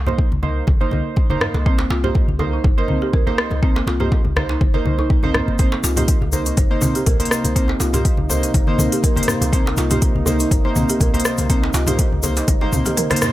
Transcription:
Already playing: C2
0.07 A#3 D#4 C5, muted conga, djembe tone, low conga
0.18 kick
0.32 C2, high conga
0.43 A#3 D#4 C5, djembe tone, high conga, djembe bass
0.67 G1, kick, djembe tone, high conga
0.81 A#3 D#4 C5, muted conga, high conga
0.91 C2, high conga, djembe tone
1.16 kick, muted conga
1.30 G1 A#3 D#4 C5, djembe tone, high conga, low conga
1.41 cross-stick, low conga
1.54 C2, muted conga, djembe tone
1.66 A#3 C4 D#4 C5, kick
1.78 A#3, djembe slap, djembe tone
1.90 C2 F4, djembe slap
2.04 A#3 D#4 G4 C5, muted conga, low conga
2.15 kick, djembe tone
2.28 C2, high conga
2.39 A#3 D#4 C5, muted conga, djembe tone, high conga, djembe bass
2.53 D#4
2.64 G1 C5, kick, djembe tone, low conga
2.78 A#3 D#4 A#4 C5, muted conga
2.88 C2 C4, high conga
3.02 G4, djembe tone
3.13 A#4, kick, muted conga, high conga, djembe bass
3.27 G1 A#3 D#4 C5, djembe tone
3.38 cross-stick
3.51 C2, muted conga, high conga, djembe tone
3.62 A#3 C4 D#4 C5, kick
3.76 A#3, djembe slap
3.87 C2 F4, djembe slap, djembe tone
4.00 A#3 D#4 G4 C5, muted conga, low conga
4.12 kick, djembe tone
4.25 C2, high conga
4.36 A#3 D#4 C5, cross-stick, high conga, djembe tone, djembe bass
4.49 D#4, djembe slap
4.61 G1 C5, kick, high conga
4.74 A#3 D#4 A#4 C5, muted conga, djembe tone, high conga
4.85 C2 D#4, high conga
4.99 D#4, djembe tone
5.10 A#3, kick, muted conga
5.23 C2 A#3 C4 D#4 C5, high conga, djembe tone, low conga
5.34 cross-stick, low conga
5.48 G1, muted conga
5.59 C3 A#3 C4 D#4 C5, kick, closed hi-hat, shaker
5.72 A#3, djembe slap, djembe tone
5.84 C2 F4, closed hi-hat, djembe slap, shaker
5.96 A#3 D#4 G4 C5, closed hi-hat, mid tom, muted conga, djembe tone, low conga, shaker
6.08 kick, closed hi-hat, shaker
6.21 C2, djembe tone, high conga
6.32 A#3 D#4 C5, muted conga, high conga, djembe bass, shaker
6.46 D#4, closed hi-hat, shaker
6.57 G1 C5, kick, closed hi-hat, djembe tone, low conga, shaker
6.71 A#3 D#4 C5, muted conga
6.81 C2 C4, mid tom, djembe tone, high conga, shaker
6.95 G4, closed hi-hat, shaker
7.06 A#4, kick, closed hi-hat, mid tom, muted conga, high conga, djembe tone, djembe bass, shaker
7.20 G1 A#3 D#4 C5, closed hi-hat
7.25 closed hi-hat
7.31 cross-stick, shaker
7.44 C2, closed hi-hat, muted conga, high conga, djembe tone, shaker
7.56 A#3 C4 D#4 C5, kick, closed hi-hat, shaker
7.68 A#3, djembe slap, djembe tone
7.80 C2 F4, closed hi-hat, djembe slap, shaker
7.93 A#3 D#4 G4 C5, closed hi-hat, mid tom, muted conga, djembe tone, low conga, shaker
8.05 kick, closed hi-hat, shaker
8.17 C2, high conga
8.29 A#3 D#4 C5, high conga, djembe tone, djembe bass, shaker
8.43 D#4, closed hi-hat, shaker
8.54 G1 C5, kick, closed hi-hat, high conga, djembe tone, shaker
8.67 A#3 D#4 C5, muted conga, high conga
8.78 C2 C4, mid tom, djembe tone, high conga, shaker
8.92 G4, closed hi-hat, shaker
9.03 A#4, kick, closed hi-hat, muted conga, shaker
9.16 G1 A#3 D#4 C5, closed hi-hat, djembe tone, high conga, low conga
9.23 closed hi-hat
9.28 cross-stick, low conga, shaker
9.41 C2, closed hi-hat, muted conga, djembe tone, shaker
9.53 A#3 C4 D#4 C5, kick, closed hi-hat, shaker
9.66 A#3, djembe slap, djembe tone
9.77 C2 F4, closed hi-hat, djembe slap, shaker
9.91 A#3 D#4 G4 C5, closed hi-hat, mid tom, muted conga, low conga, shaker
10.02 kick, closed hi-hat, djembe tone, shaker
10.15 C2, high conga
10.26 A#3 D#4 C5, muted conga, djembe tone, high conga, djembe bass, shaker
10.40 D#4, closed hi-hat, shaker
10.51 G1 C5, kick, closed hi-hat, djembe tone, low conga, shaker
10.65 A#3 D#4 C5, muted conga
10.76 C2 C4, mid tom, high conga, shaker
10.89 G4, closed hi-hat, djembe tone, shaker
11.00 A#4, kick, closed hi-hat, mid tom, muted conga, high conga, djembe bass, shaker
11.14 G1 A#3 D#4 C5, closed hi-hat, djembe tone
11.20 closed hi-hat
11.25 cross-stick, shaker
11.38 C2, closed hi-hat, muted conga, djembe tone, high conga, shaker
11.50 A#3 C4 D#4 C5, kick, closed hi-hat, shaker
11.63 A#3, djembe slap
11.73 C2 F4, closed hi-hat, djembe slap, djembe tone, shaker
11.87 A#3 D#4 G4 C5, closed hi-hat, mid tom, muted conga, low conga, shaker
11.99 kick, closed hi-hat, djembe tone, shaker
12.12 C2, high conga
12.23 A#3 D#4 C5, closed hi-hat, djembe tone, high conga, djembe bass, shaker
12.37 D#4, closed hi-hat, djembe slap, shaker
12.48 G1 C5, kick, closed hi-hat, high tom, high conga, shaker
12.61 A#3 D#4 C5, high tom, muted conga, djembe tone, high conga
12.72 C2 C4, mid tom, high conga, shaker
12.86 G4, closed hi-hat, mid tom, djembe tone, shaker
12.97 A#4, closed hi-hat, mid tom, muted conga, shaker
13.10 A#3 D#4 C5, cross-stick, closed hi-hat, djembe tone, high conga, low conga
13.16 closed hi-hat
13.21 cross-stick, mid tom, low conga, shaker

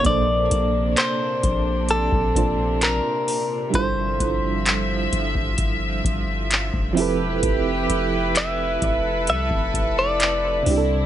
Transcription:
0.01 A#1 A#2 C3 A#3 D4, kick, closed hi-hat
0.05 D4 A4 D5
0.10 C5
0.51 A#1, closed hi-hat
0.97 C5, clap, closed hi-hat
1.43 A#1, kick, closed hi-hat
1.89 C4 A4, closed hi-hat
2.12 A#1, kick
2.34 A#2 A#3 D4 F4, kick, closed hi-hat
2.38 C5
2.82 A#4, clap, closed hi-hat
3.28 open hi-hat
3.70 G1 F3 G3 D4 E4 E5, kick, closed hi-hat
3.75 F4 A4 C5
4.20 G1, kick, closed hi-hat
4.66 clap, closed hi-hat
5.12 G1, closed hi-hat
5.35 G1, kick
5.58 kick, closed hi-hat
6.04 G1, kick, closed hi-hat
6.51 clap, closed hi-hat
6.73 F1, kick
6.93 F3 C4 E4 G4 B4
6.97 G4 A4, open hi-hat
7.02 B4
7.20 E1
7.43 F1, kick, closed hi-hat
7.89 F1, closed hi-hat
8.35 E5, clap, closed hi-hat
8.81 F1 A4, kick, closed hi-hat
9.27 C2 E5, closed hi-hat
9.50 F1, kick
9.74 F1, kick, closed hi-hat
9.99 D5
10.20 clap, closed hi-hat
10.62 C3 C4 E4
10.66 C2 D3 C4 D4 E4, open hi-hat
10.71 G4
10.77 A4

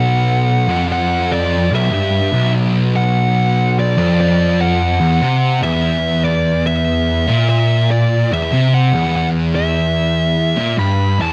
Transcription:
Already playing: B1 F#5
0.68 F2
0.92 F#5
1.32 D5
1.73 B1 E5
1.93 G2
2.35 B1
2.96 F#5
3.79 D5
3.98 F2
4.21 D5
4.61 F#5
5.00 E2
5.21 C3
5.63 E2 E5
6.24 D5
6.67 E5
7.29 A#2
7.49 E5
7.91 D5
8.32 E2 E5
8.52 C3
8.74 F#5
8.92 E2
9.16 F#5
9.55 E5
10.57 A#2
10.77 G2 B5
11.19 E2 A5

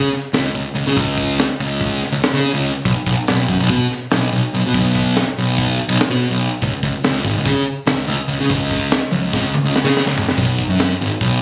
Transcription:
0.12 snare, closed hi-hat
0.33 C#2, snare, closed hi-hat
0.54 C#2, closed hi-hat
0.75 C#2, closed hi-hat
0.87 C#3
0.97 C#2, kick, closed hi-hat
1.18 kick, closed hi-hat
1.39 snare, closed hi-hat
1.60 C#2, closed hi-hat
1.81 kick, closed hi-hat
2.02 snare, closed hi-hat
2.12 C#2
2.23 snare, closed hi-hat
2.33 C#3
2.45 snare, closed hi-hat
2.54 C#2
2.64 closed hi-hat
2.85 B1, kick, closed hi-hat
3.06 B1, kick, snare, closed hi-hat
3.27 B1, snare, closed hi-hat
3.48 F#2, kick, closed hi-hat
3.60 B1
3.69 B2, kick, closed hi-hat
3.91 snare, closed hi-hat
4.11 B1, snare, closed hi-hat
4.32 B1, closed hi-hat
4.54 B1, closed hi-hat
4.66 B2
4.74 B1, kick, closed hi-hat
4.95 kick, closed hi-hat
5.16 snare, closed hi-hat
5.37 B1, closed hi-hat
5.58 kick, closed hi-hat
5.80 closed hi-hat
5.88 B1
6.00 snare, closed hi-hat
6.10 B2
6.21 snare, closed hi-hat
6.30 B1
6.42 closed hi-hat
6.62 C#2, kick, closed hi-hat
6.83 C#2, kick, closed hi-hat
7.04 C#2, snare, closed hi-hat
7.25 G#1, kick, closed hi-hat
7.37 C#2
7.45 C#3, kick, snare, closed hi-hat
7.66 closed hi-hat
7.87 C#2, snare, closed hi-hat
8.08 C#2, closed hi-hat
8.28 C#2, closed hi-hat
8.40 C#3
8.50 C#2, kick, closed hi-hat
8.71 kick, snare, closed hi-hat
8.91 snare, closed hi-hat
9.12 C#2, high tom
9.33 kick, snare
9.54 mid tom
9.64 C#2
9.76 snare
9.84 C#3, snare
9.97 snare
10.06 C#2, snare
10.18 floor tom
10.29 snare
10.38 B1, kick, closed hi-hat
10.58 kick, closed hi-hat
10.69 F#2
10.79 snare, closed hi-hat
11.01 G#1, snare, closed hi-hat
11.21 B1, kick, closed hi-hat

